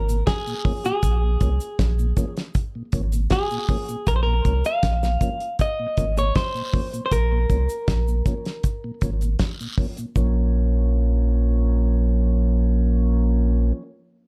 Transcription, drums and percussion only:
0.09 closed hi-hat soft
0.09 cabasa medium
0.27 kick loud
0.27 snare loud
0.27 closed hi-hat medium
0.27 long guiro medium
0.47 cabasa soft
0.65 kick loud
0.65 open hi-hat medium
0.85 closed hi-hat soft
0.85 cabasa medium
1.03 kick loud
1.03 closed hi-hat loud
1.03 cabasa medium
1.41 kick loud
1.41 closed hi-hat medium
1.41 cabasa medium
1.60 closed hi-hat medium
1.60 cabasa medium
1.79 kick loud
1.79 snare loud
1.79 closed hi-hat loud
1.99 cabasa soft
2.17 kick loud
2.17 closed hi-hat medium
2.17 cabasa medium
2.37 snare medium
2.37 closed hi-hat medium
2.54 kick loud
2.54 closed hi-hat medium
2.54 cabasa medium
2.92 kick medium
2.92 closed hi-hat medium
2.92 cabasa soft
3.12 closed hi-hat soft
3.12 cabasa medium
3.30 kick loud
3.30 snare loud
3.30 closed hi-hat medium
3.30 long guiro medium
3.50 cabasa soft
3.68 kick loud
3.68 open hi-hat medium
3.88 closed hi-hat soft
3.88 cabasa medium
4.07 kick loud
4.07 closed hi-hat loud
4.07 cabasa medium
4.45 kick medium
4.45 closed hi-hat medium
4.45 cabasa soft
4.65 closed hi-hat medium
4.65 cabasa medium
4.83 kick loud
4.83 snare loud
4.83 closed hi-hat loud
5.03 snare medium
5.03 cabasa medium
5.21 kick loud
5.21 closed hi-hat medium
5.21 cabasa medium
5.40 closed hi-hat medium
5.59 kick loud
5.59 closed hi-hat medium
5.59 cabasa medium
5.97 kick medium
5.97 closed hi-hat medium
5.97 cabasa soft
6.17 closed hi-hat soft
6.17 cabasa medium
6.35 kick loud
6.35 snare loud
6.35 closed hi-hat medium
6.35 long guiro medium
6.56 cabasa soft
6.74 kick loud
6.74 open hi-hat medium
6.93 closed hi-hat medium
6.93 cabasa medium
7.12 kick loud
7.12 closed hi-hat loud
7.12 cabasa medium
7.50 kick loud
7.50 closed hi-hat medium
7.50 cabasa medium
7.69 closed hi-hat soft
7.69 cabasa medium
7.88 kick loud
7.88 snare loud
7.88 closed hi-hat loud
8.08 cabasa medium
8.26 kick loud
8.26 closed hi-hat medium
8.26 cabasa medium
8.45 snare medium
8.45 closed hi-hat soft
8.63 kick loud
8.63 closed hi-hat medium
8.63 cabasa medium
9.01 kick loud
9.01 closed hi-hat medium
9.01 cabasa soft
9.21 closed hi-hat soft
9.21 cabasa medium
9.39 kick loud
9.39 snare loud
9.39 closed hi-hat medium
9.39 long guiro medium
9.60 cabasa soft
9.78 kick loud
9.78 open hi-hat medium
9.97 closed hi-hat soft
9.97 cabasa medium
10.16 kick loud
10.16 cabasa medium

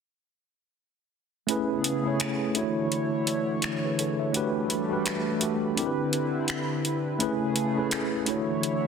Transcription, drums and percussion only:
1.49 closed hi-hat medium
1.84 closed hi-hat medium
2.20 finger snap loud
2.20 closed hi-hat medium
2.55 closed hi-hat medium
2.92 closed hi-hat medium
3.27 closed hi-hat medium
3.62 finger snap medium
3.62 closed hi-hat medium
3.99 closed hi-hat medium
4.34 closed hi-hat medium
4.70 closed hi-hat medium
5.06 finger snap loud
5.06 closed hi-hat medium
5.41 closed hi-hat medium
5.77 closed hi-hat medium
6.13 closed hi-hat medium
6.48 finger snap loud
6.48 closed hi-hat medium
6.85 closed hi-hat medium
7.20 closed hi-hat medium
7.56 closed hi-hat medium
7.91 finger snap loud
7.91 closed hi-hat medium
8.26 closed hi-hat medium
8.63 closed hi-hat medium

